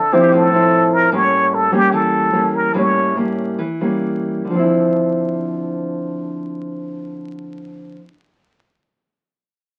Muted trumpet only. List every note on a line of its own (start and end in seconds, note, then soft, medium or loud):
0.00 0.14 A4 medium
0.13 0.38 G4 medium
0.36 0.95 A4 medium
0.93 1.16 A#4 medium
1.14 1.56 C#5 medium
1.54 1.72 A4 medium
1.73 1.95 G4 medium
1.94 2.57 A4 medium
2.55 2.78 A#4 medium
2.77 3.17 C#5 medium